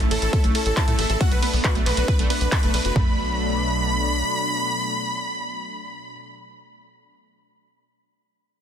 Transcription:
Already playing: analog synth pad A3 C#4 E4
0.00 analog synth bass A1, synth pluck A3, closed hi-hat
0.11 analog synth bass A1, supersaw synth A4, grand piano A4, open hi-hat, ride
0.22 analog synth bass A1, supersaw synth A4, synth pluck A4, grand piano A4, closed hi-hat
0.33 supersaw synth A4, grand piano A4, synth pluck E5, kick, closed hi-hat
0.44 analog synth bass A1, synth pluck A3, closed hi-hat
0.55 synth pluck C#4, supersaw synth A4, grand piano A4, open hi-hat, ride
0.66 analog synth bass A1, supersaw synth A4, grand piano A4, closed hi-hat
0.77 synth pluck E4, supersaw synth A4 A5, grand piano A5, kick, clap, closed hi-hat
0.88 analog synth bass A2, synth pluck A3, supersaw synth A4, grand piano A4, closed hi-hat
0.99 analog synth bass A1, supersaw synth A4, grand piano A4, synth pluck E5, open hi-hat, ride
1.10 analog synth bass A1, supersaw synth A4, synth pluck A4, grand piano A4, closed hi-hat
1.21 synth pluck A3, analog synth pad B3 D4, supersaw synth F#4 F#5, grand piano F#5, kick, closed hi-hat
1.32 analog synth bass B1, supersaw synth B4, grand piano B4, closed hi-hat
1.42 synth pluck B3, supersaw synth B4, grand piano B4, open hi-hat, ride
1.53 analog synth bass B1, synth pluck B3, open hi-hat
1.64 synth pluck F#4, supersaw synth B4, grand piano B4, kick, clap, closed hi-hat
1.75 analog synth bass B1, synth pluck A3, closed hi-hat
1.86 analog synth bass B1, supersaw synth B4, grand piano B4, clap, open hi-hat, ride
1.97 analog synth bass B1, synth pluck F#4, supersaw synth B4, grand piano B4, closed hi-hat
2.08 supersaw synth B4, synth pluck B4, kick, closed hi-hat
2.19 analog synth bass B1, synth pluck A3, closed hi-hat
2.30 synth pluck B3, supersaw synth B4, grand piano B4, open hi-hat, ride
2.41 analog synth bass B1, supersaw synth B4, grand piano B4, closed hi-hat
2.52 synth pluck D4, supersaw synth B4 B5, grand piano B5, kick, clap, closed hi-hat
2.63 analog synth bass F#1, synth pluck A3, supersaw synth B4, grand piano B4, closed hi-hat
2.74 analog synth bass B1, supersaw synth B4, synth pluck B4, grand piano B4, open hi-hat, ride
2.85 analog synth bass F#1, synth pluck F#4, supersaw synth B4, grand piano B4, closed hi-hat
2.96 analog synth bass B1, analog synth pad B2 F#3 A3 D4, synth pluck A3, supersaw synth B5, grand piano B5, kick, floor tom

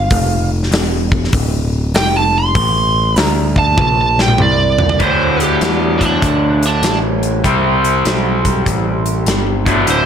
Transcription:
Already playing: lead electric guitar F5
0.10 picked electric bass F1, kick, open hi-hat
0.63 snare
0.71 picked electric bass E1, snare, open hi-hat
1.12 kick
1.24 snare
1.33 picked electric bass D1, kick, open hi-hat
1.94 picked electric bass F1, lead electric guitar G5, snare, open hi-hat
2.17 lead electric guitar A5
2.38 lead electric guitar C6
2.55 picked electric bass A1, kick, open hi-hat
3.16 picked electric bass D2, lead electric guitar A#5, snare, open hi-hat
3.56 lead electric guitar A5, kick
3.77 picked electric bass A#1, lead electric guitar A5, kick, high tom
4.01 lead electric guitar A5
4.19 lead electric guitar G5, snare
4.28 mid tom
4.38 picked electric bass C2, lead electric guitar D5, mid tom
4.78 floor tom
4.89 floor tom
5.00 overdriven electric guitar D2 A2 D3, picked electric bass D2, lead electric guitar C5, kick, closed hi-hat
5.40 lead electric guitar G4, closed hi-hat
5.61 picked electric bass E2, snare, closed hi-hat
6.01 lead electric guitar D4, kick, closed hi-hat
6.22 picked electric bass D2, kick, closed hi-hat
6.63 lead electric guitar D4, closed hi-hat
6.82 picked electric bass A1, snare, closed hi-hat
7.23 closed hi-hat
7.44 picked electric bass C2, overdriven electric guitar C3 G3 C4, kick, closed hi-hat
7.85 closed hi-hat
8.05 picked electric bass B1, snare, closed hi-hat
8.45 kick, closed hi-hat
8.66 picked electric bass A1, kick, closed hi-hat
9.06 closed hi-hat
9.26 picked electric bass G1, snare, closed hi-hat
9.66 overdriven electric guitar D2 A2 D3, kick, closed hi-hat
9.87 picked electric bass D1, lead electric guitar C5, closed hi-hat

